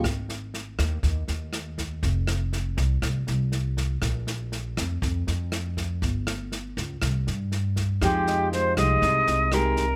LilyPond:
<<
  \new Staff \with { instrumentName = "Tine electric piano" } { \time 4/4 \key aes \major \tempo 4 = 120 r1 | r1 | r1 | r1 |
r8 ees''4. r2 | }
  \new Staff \with { instrumentName = "Flute" } { \time 4/4 \key aes \major r1 | r1 | r1 | r1 |
g'4 c''8 ees''4. bes'4 | }
  \new Staff \with { instrumentName = "Nylon-string guitar" } { \time 4/4 \key aes \major << { r1 | r1 | r1 | r1 |
<aes ees' g'>4. <aes ees' g'>4. <aes ees' g'>8 r8 | } \\ { r1 | r1 | r1 | r1 |
f2 c2 | } >> }
  \new Staff \with { instrumentName = "Upright bass" } { \clef bass \time 4/4 \key aes \major aes,,4. ees,8 ees,8 ees,4. | f,,4. c,8 c,8 c,4. | bes,,4. f,8 f,8 f,4. | g,,4. des,8 c,8 g,4. |
f,4. c,8 c,8 c,4. | }
  \new DrumStaff \with { instrumentName = "Drums" } \drummode { \time 4/4 <bd ss sn>8 sn8 sn8 <bd ss sn>8 <bd sn>8 sn8 <ss sn>8 <bd sn>8 | <bd sn>8 <ss sn>8 sn8 <bd sn>8 <bd ss sn>8 sn8 sn8 <bd sn>8 | <bd ss sn>8 sn8 sn8 <bd ss sn>8 <bd sn>8 sn8 <ss sn>8 <bd sn>8 | <bd sn>8 <ss sn>8 sn8 <bd sn>8 <bd ss sn>8 sn8 sn8 <bd sn>8 |
<bd ss sn>8 sn8 sn8 <bd ss sn>8 <bd sn>8 sn8 <ss sn>8 <bd sn>8 | }
>>